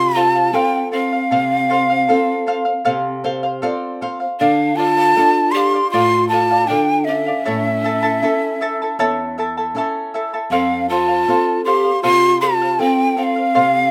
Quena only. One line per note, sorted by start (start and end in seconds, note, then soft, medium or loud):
0.00 0.18 C6 loud
0.16 0.56 A5 loud
0.54 0.91 G5 loud
0.92 3.20 F5 loud
4.40 4.78 F5 loud
4.76 5.53 A5 loud
5.51 5.90 C6 loud
5.91 6.28 C6 loud
6.29 6.69 A5 loud
6.67 7.06 G5 loud
7.05 9.36 E5 loud
10.51 10.86 F5 loud
10.89 11.61 A5 loud
11.65 12.00 C6 medium
12.03 12.38 C6 loud
12.41 12.81 A5 loud
12.79 13.18 G5 loud
13.18 13.24 G5 loud
13.23 13.91 F5 loud